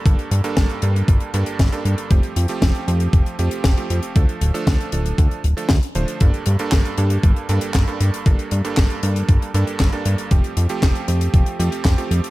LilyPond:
<<
  \new Staff \with { instrumentName = "Electric grand piano" } { \time 4/4 \key g \minor \tempo 4 = 117 <g, g bes d' a'>8. <g, g bes d' a'>8. <g, g bes d' a'>4 <g, g bes d' a'>8. <g, g bes d' a'>8. | <f a c' g'>8. <f a c' g'>8. <f a c' g'>4 <f a c' g'>8. <f a c' g'>8. | <f a d' a'>8. <f a d' a'>8. <f a d' a'>4 r16 <f a d' a'>16 r8 <f a d' c''>8 | <g, g bes d' a'>8. <g, g bes d' a'>8. <g, g bes d' a'>4 <g, g bes d' a'>8. <g, g bes d' a'>8. |
<g, g bes d' a'>8. <g, g bes d' a'>8. <g, g bes d' a'>4 <g, g bes d' a'>8. <g, g bes d' a'>8. | <f a c' g'>8. <f a c' g'>8. <f a c' g'>4 <f a c' g'>8. <f a c' g'>8. | }
  \new Staff \with { instrumentName = "Analog synth bass" } { \clef bass \time 4/4 \key g \minor g,,8 g,8 g,,8 g,8 g,,8 g,8 g,,8 g,8 | f,,8 f,8 f,,8 f,8 f,,8 f,8 f,,8 f,8 | d,8 d,,8 d,8 d,,8 d,8 d,,8 d,8 d,,8 | g,,8 g,8 g,,8 g,8 g,,8 g,8 g,,8 g,8 |
g,,8 g,8 g,,8 g,8 g,,8 g,8 g,,8 g,8 | f,,8 f,8 f,,8 f,8 f,,8 f,8 f,,8 f,8 | }
  \new DrumStaff \with { instrumentName = "Drums" } \drummode { \time 4/4 <hh bd>16 hh16 hh16 hh16 <hh bd sn>16 hh16 hh16 hh16 <hh bd>16 hh16 hh16 hh16 <hh bd sn>16 hh16 hh16 hh16 | <hh bd>16 hh16 hh16 hh16 <hh bd sn>16 hh16 hh16 hh16 <hh bd>16 hh16 hh16 hh16 <hh bd sn>16 hh16 hh16 hh16 | <hh bd>16 hh16 hh16 hh16 <hh bd sn>16 hh16 hh16 hh16 <hh bd>16 hh16 hh16 hh16 <hh bd sn>16 hh16 hh16 hh16 | <hh bd>16 hh16 hh16 hh16 <hc hh bd sn>16 hh16 hh16 hh16 <hh bd>16 hh16 hh16 hh16 <hc hh bd sn>16 hh16 hh16 hh16 |
<hh bd>16 hh16 hh16 hh16 <hc hh bd sn>16 hh16 hh16 hh16 <hh bd>16 hh16 hh16 hh16 <hc hh bd sn>16 hh16 hh16 hh16 | <hh bd>16 hh16 hh16 hh16 <hc hh bd sn>16 hh16 hh16 hh16 <hh bd>16 hh16 hh16 hh16 <hc hh bd sn>16 hh16 hh16 hh16 | }
>>